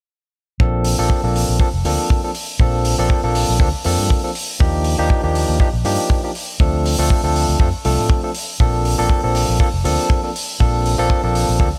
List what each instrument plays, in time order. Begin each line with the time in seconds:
0.60 fingered electric bass A#1, tine electric piano F3 A#3 C4 D4 A4, kick
0.84 open hi-hat
0.98 fingered electric bass A#1, tine electric piano F3 A#3 C4 D4 A4
1.10 kick
1.23 fingered electric bass A#1, tine electric piano F3 A#3 C4 D4 A4
1.36 open hi-hat
1.49 fingered electric bass A#1
1.60 tine electric piano F3 A#3 C4 D4 A4, muted fingered electric bass stroke, kick
1.74 fingered electric bass F1
1.85 fingered electric bass D2, tine electric piano F3 A#3 C4 D4 A4, open hi-hat
2.10 kick
2.23 tine electric piano F3 A#3 C4 D4 A4
2.35 open hi-hat
2.60 fingered electric bass A#1, tine electric piano F3 A#3 C4 D4 A4, kick
2.85 open hi-hat
2.98 fingered electric bass A#1, tine electric piano F3 A#3 C4 D4 A4
3.10 kick
3.23 fingered electric bass A#1, tine electric piano F3 A#3 C4 D4 A4
3.35 open hi-hat
3.49 fingered electric bass A#1
3.60 fingered electric bass D2, tine electric piano F3 A#3 C4 D4 A4, kick
3.84 fingered electric bass F2, tine electric piano F3 A#3 C4 D4 A4, open hi-hat
3.99 fingered electric bass G2
4.10 kick
4.23 tine electric piano F3 A#3 C4 D4 A4
4.35 open hi-hat
4.60 fingered electric bass D#2, tine electric piano F3 A#3 D4 D#4 G4, kick
4.84 open hi-hat
4.98 fingered electric bass D#2, tine electric piano F3 A#3 D4 D#4 G4
5.10 kick
5.23 fingered electric bass D#2, tine electric piano F3 A#3 D4 D#4 G4
5.35 open hi-hat
5.49 fingered electric bass D#2
5.60 tine electric piano F3 A#3 D4 D#4 G4, muted fingered electric bass stroke, kick
5.73 fingered electric bass A#1
5.85 fingered electric bass G2, tine electric piano F3 A#3 D4 D#4 G4, open hi-hat
6.10 kick
6.23 tine electric piano F3 A#3 D4 D#4 G4
6.35 open hi-hat
6.60 fingered electric bass D2, tine electric piano F3 A3 C4 D4 A4, kick
6.86 open hi-hat
6.98 fingered electric bass D2, tine electric piano F3 A3 C4 D4 A4
7.10 kick
7.23 fingered electric bass D2, tine electric piano F3 A3 C4 D4 A4
7.36 open hi-hat
7.49 fingered electric bass D2
7.60 fingered electric bass F2, tine electric piano F3 A3 C4 D4 A4, kick
7.85 fingered electric bass C2, tine electric piano F3 A3 C4 D4 A4, open hi-hat
7.99 fingered electric bass A2
8.10 kick
8.23 tine electric piano F3 A3 C4 D4 A4
8.35 open hi-hat
8.60 fingered electric bass A#1, tine electric piano F3 A#3 C4 D4 A4, kick
8.85 open hi-hat
8.98 fingered electric bass A#1, tine electric piano F3 A#3 C4 D4 A4
9.10 kick
9.23 fingered electric bass A#1, tine electric piano F3 A#3 C4 D4 A4
9.35 open hi-hat
9.49 fingered electric bass A#1
9.59 tine electric piano F3 A#3 C4 D4 A4, muted fingered electric bass stroke, kick
9.74 fingered electric bass F1
9.84 fingered electric bass D2, tine electric piano F3 A#3 C4 D4 A4, open hi-hat
10.10 kick
10.23 tine electric piano F3 A#3 C4 D4 A4
10.36 open hi-hat
10.60 fingered electric bass A#1, tine electric piano F3 A#3 C4 D4 A4, kick
10.86 open hi-hat
10.98 fingered electric bass A#1, tine electric piano F3 A#3 C4 D4 A4
11.10 kick
11.23 fingered electric bass A#1, tine electric piano F3 A#3 C4 D4 A4
11.35 open hi-hat
11.49 fingered electric bass A#1
11.60 fingered electric bass D2, tine electric piano F3 A#3 C4 D4 A4, kick